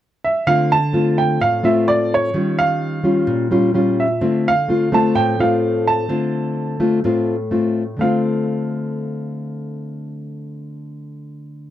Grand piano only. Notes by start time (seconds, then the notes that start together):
0.24 E5
0.47 F5
0.72 A5
1.18 G5
1.41 F5
1.65 E5
1.88 D5
2.14 C#5
2.59 F5
4.00 E5
4.48 F5
4.94 A5
5.15 G5
5.40 F5
5.87 A5
8.01 F5